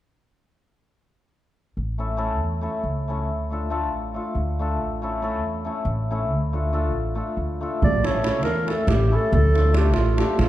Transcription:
1.77 2.39 A1 medium
1.98 2.13 A3 soft
1.98 2.14 C#4 soft
1.98 2.14 E4 soft
1.98 2.14 A4 medium
2.17 2.33 A3 medium
2.17 2.33 C#4 medium
2.17 2.33 E4 medium
2.17 2.33 A4 medium
2.39 2.66 E2 medium
2.61 2.77 A3 medium
2.61 2.78 C#4 soft
2.61 2.78 E4 medium
2.61 2.78 A4 medium
2.84 3.29 C#2 medium
3.08 3.23 A3 medium
3.08 3.24 C#4 medium
3.08 3.24 E4 medium
3.08 3.24 A4 medium
3.29 3.90 D2 medium
3.50 3.65 A3 soft
3.50 3.66 D4 soft
3.50 3.66 F4 soft
3.50 3.67 A4 medium
3.70 3.85 A3 medium
3.70 3.85 D4 medium
3.70 3.85 F4 medium
3.70 3.86 A4 medium
3.90 4.17 A1 medium
4.14 4.30 A3 medium
4.14 4.30 D4 soft
4.14 4.31 F4 medium
4.14 4.31 A4 medium
4.35 4.80 D2 medium
4.59 4.75 A3 medium
4.59 4.75 D4 medium
4.59 4.75 F4 medium
4.59 4.76 A4 medium
4.80 5.41 A1 medium
5.02 5.17 A3 medium
5.02 5.17 C#4 medium
5.02 5.18 E4 medium
5.02 5.18 A4 medium
5.22 5.37 A3 medium
5.22 5.37 C#4 medium
5.22 5.37 E4 medium
5.22 5.38 A4 medium
5.41 5.68 E2 medium
5.65 5.81 A3 medium
5.65 5.81 C#4 medium
5.65 5.82 E4 soft
5.65 5.82 A4 medium
5.85 6.31 A1 medium
6.11 6.26 A3 medium
6.11 6.26 C#4 medium
6.11 6.27 E4 medium
6.11 6.27 A4 medium
6.31 6.92 D2 medium
6.53 6.68 A3 medium
6.53 6.69 D4 medium
6.53 6.69 F4 soft
6.53 6.69 A4 medium
6.73 6.88 A3 medium
6.73 6.88 D4 medium
6.73 6.88 F4 medium
6.73 6.89 A4 medium
6.92 7.19 A1 medium
7.15 7.32 A3 medium
7.15 7.32 D4 soft
7.15 7.32 F4 soft
7.15 7.33 A4 medium
7.37 7.64 D2 medium
7.61 7.77 A3 medium
7.61 7.77 D4 medium
7.61 7.77 F4 medium
7.61 7.78 A4 medium
7.82 8.43 A1 medium
7.82 8.08 D5 medium
7.82 davul low medium
8.03 8.19 A3 medium
8.03 8.19 C#4 soft
8.03 8.19 E4 soft
8.03 8.19 A4 medium
8.03 8.43 C#5 medium
8.03 davul high medium
8.23 8.38 A3 medium
8.23 8.38 C#4 medium
8.23 8.39 E4 medium
8.23 8.39 A4 medium
8.23 davul high medium
8.43 8.70 E2 medium
8.43 8.71 A#4 medium
8.43 davul high medium
8.56 davul high soft
8.66 8.82 A3 soft
8.66 8.83 C#4 soft
8.66 8.83 E4 soft
8.66 8.83 A4 medium
8.66 8.91 A4 medium
8.66 davul high medium
8.78 davul high soft
8.87 9.14 A1 medium
8.87 9.17 G4 medium
8.87 davul high medium
8.87 davul low medium
9.01 davul high soft
9.11 9.27 A3 medium
9.11 9.27 C#4 medium
9.11 9.28 E4 medium
9.11 9.28 A4 medium
9.16 9.34 A4 medium
9.32 9.93 D2 loud
9.32 9.72 A4 medium
9.32 davul low medium
9.54 9.69 A3 soft
9.54 9.70 D4 medium
9.54 9.70 F4 soft
9.54 9.70 A4 soft
9.54 davul high medium
9.73 9.88 A3 medium
9.73 9.88 D4 medium
9.73 9.89 F4 medium
9.73 9.89 A4 medium
9.73 davul high medium
9.77 9.95 G4 medium
9.93 10.20 A1 medium
9.93 10.21 F4 medium
9.93 davul high medium
10.06 davul high soft
10.17 10.33 A3 medium
10.17 10.33 D4 medium
10.17 10.33 F4 medium
10.17 10.41 G4 medium
10.17 10.34 A4 medium
10.17 davul high medium
10.29 davul high soft
10.39 10.49 A#1 medium
10.39 10.49 F4 medium
10.39 davul high medium
10.39 davul low medium

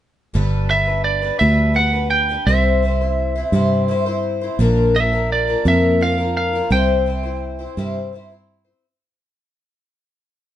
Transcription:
0.34 1.30 G1 medium
0.34 0.70 G2 medium
0.34 0.70 D3 medium
0.34 0.68 G3 medium
0.34 0.70 B3 medium
0.34 0.71 D4 medium
0.34 0.71 B4 medium
0.69 0.87 G3 medium
0.69 0.88 B3 medium
0.69 0.87 D4 medium
0.69 0.86 B4 medium
0.69 1.04 E5 medium
0.87 1.24 G3 soft
0.87 1.23 B3 soft
0.87 1.22 D4 soft
0.87 1.21 B4 soft
1.04 1.39 D5 medium
1.22 1.39 G3 soft
1.22 1.39 B3 soft
1.22 1.40 D4 soft
1.22 1.40 B4 soft
1.39 2.36 D2 medium
1.39 1.75 G2 medium
1.39 1.76 D3 medium
1.39 1.73 G3 medium
1.39 1.74 B3 medium
1.39 1.75 D4 medium
1.39 1.76 B4 medium
1.39 1.77 E5 medium
1.74 1.93 G3 medium
1.74 1.93 B3 medium
1.74 1.92 D4 medium
1.74 1.92 B4 medium
1.74 2.10 F#5 medium
1.93 2.30 G3 soft
1.93 2.30 B3 soft
1.93 2.29 D4 soft
1.93 2.28 B4 soft
2.10 2.48 G5 medium
2.29 2.47 G3 soft
2.29 2.48 B3 soft
2.29 2.48 D4 soft
2.29 2.47 B4 soft
2.46 3.42 C2 medium
2.46 2.82 C3 medium
2.46 2.81 G3 medium
2.46 2.82 C4 medium
2.46 2.83 E4 medium
2.46 2.84 C5 medium
2.46 4.20 E5 medium
2.82 3.00 G3 medium
2.82 3.01 C4 medium
2.82 3.01 E4 medium
2.82 3.00 C5 medium
3.01 3.37 C4 soft
3.01 3.36 E4 soft
3.01 3.34 C5 soft
3.36 3.53 C4 soft
3.36 3.54 E4 medium
3.36 3.53 C5 medium
3.52 4.48 G2 medium
3.52 3.88 C3 medium
3.52 3.87 G3 medium
3.52 3.88 C4 medium
3.52 3.90 E4 medium
3.52 3.90 C5 medium
3.88 4.06 G3 medium
3.88 4.07 C4 medium
3.88 4.07 E4 medium
3.88 4.05 C5 medium
4.06 4.43 C4 soft
4.06 4.42 E4 soft
4.06 4.40 C5 medium
4.41 4.60 C4 soft
4.41 4.60 E4 medium
4.41 4.59 C5 medium
4.59 5.54 A#1 medium
4.59 4.95 A#2 medium
4.59 4.95 D3 medium
4.59 4.94 F3 medium
4.59 4.95 A#3 medium
4.59 4.96 D4 medium
4.59 4.96 A#4 medium
4.95 5.13 F3 medium
4.95 5.12 A#4 medium
4.95 5.32 E5 medium
5.13 5.50 F3 soft
5.13 5.49 A#3 soft
5.13 5.48 D4 soft
5.13 5.46 A#4 soft
5.32 5.64 D5 medium
5.48 5.65 F3 soft
5.48 5.65 A#3 soft
5.48 5.65 D4 soft
5.48 5.65 A#4 soft
5.65 6.60 F2 medium
5.65 6.01 A#2 medium
5.65 6.01 D3 medium
5.65 6.00 F3 medium
5.65 6.01 A#3 medium
5.65 6.01 D4 medium
5.65 6.02 A#4 medium
5.65 6.03 E5 medium
6.01 6.18 F3 medium
6.01 6.19 A#3 medium
6.01 6.19 D4 medium
6.01 6.17 A#4 medium
6.01 6.36 F5 medium
6.18 6.55 F3 soft
6.18 6.55 A#3 soft
6.18 6.54 D4 soft
6.18 6.52 A#4 soft
6.37 6.72 F5 medium
6.53 6.71 F3 soft
6.53 6.71 A#3 soft
6.53 6.72 D4 medium
6.53 6.71 A#4 medium
6.70 7.66 C2 medium
6.70 7.06 C3 medium
6.70 7.05 G3 medium
6.70 7.06 C4 medium
6.70 7.07 E4 medium
6.70 7.08 C5 medium
6.70 8.45 G5 medium
7.07 7.25 C4 medium
7.07 7.24 E4 medium
7.07 7.22 C5 medium
7.23 7.60 C4 soft
7.23 7.59 E4 soft
7.23 7.58 C5 soft
7.59 7.77 C4 soft
7.59 7.77 E4 medium
7.59 7.77 C5 medium
7.77 8.73 G2 medium
7.77 8.13 C3 medium
7.77 8.12 G3 medium
7.77 8.13 C4 medium
7.77 8.13 E4 medium
7.77 8.14 C5 medium
8.13 8.30 G3 medium
8.13 8.31 C4 medium
8.13 8.31 E4 medium
8.13 8.29 C5 medium
8.30 8.67 C4 soft
8.30 8.65 E4 medium
8.30 8.63 C5 medium
8.65 8.85 C4 soft
8.65 8.84 E4 soft
8.65 8.83 C5 medium

